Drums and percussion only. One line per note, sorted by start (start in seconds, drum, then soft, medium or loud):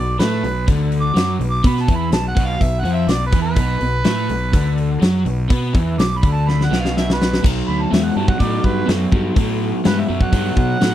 0.20 snare loud
0.20 open hi-hat medium
0.44 open hi-hat soft
0.68 kick medium
0.68 open hi-hat medium
0.92 open hi-hat medium
1.16 snare medium
1.16 open hi-hat medium
1.41 open hi-hat soft
1.64 kick loud
1.64 open hi-hat medium
1.77 snare soft
1.88 kick medium
1.88 open hi-hat soft
2.12 snare loud
2.12 open hi-hat medium
2.37 kick medium
2.37 open hi-hat medium
2.61 kick medium
2.61 open hi-hat medium
2.85 open hi-hat medium
3.08 snare medium
3.08 open hi-hat medium
3.32 kick loud
3.32 open hi-hat medium
3.56 kick medium
3.56 open hi-hat medium
3.81 open hi-hat soft
4.04 snare loud
4.04 open hi-hat medium
4.29 open hi-hat soft
4.53 kick medium
4.53 open hi-hat medium
4.78 open hi-hat soft
5.02 snare loud
5.02 open hi-hat medium
5.26 open hi-hat soft
5.50 kick loud
5.50 open hi-hat medium
5.75 kick medium
5.75 open hi-hat soft
5.99 snare loud
5.99 open hi-hat medium
6.23 kick medium
6.23 open hi-hat soft
6.49 snare medium
6.61 snare medium
6.73 snare medium
6.85 snare medium
6.97 snare medium
7.10 snare medium
7.22 snare medium
7.33 snare medium
7.44 kick loud
7.44 crash loud
7.93 snare loud
7.93 open hi-hat medium
8.28 kick loud
8.40 kick medium
8.40 open hi-hat soft
8.64 kick medium
8.88 snare loud
8.88 open hi-hat soft
9.12 kick medium
9.36 kick loud
9.36 open hi-hat medium
9.84 snare loud
9.84 open hi-hat medium
10.21 kick medium
10.33 kick medium
10.33 open hi-hat medium
10.57 kick medium
10.81 snare loud
10.81 open hi-hat soft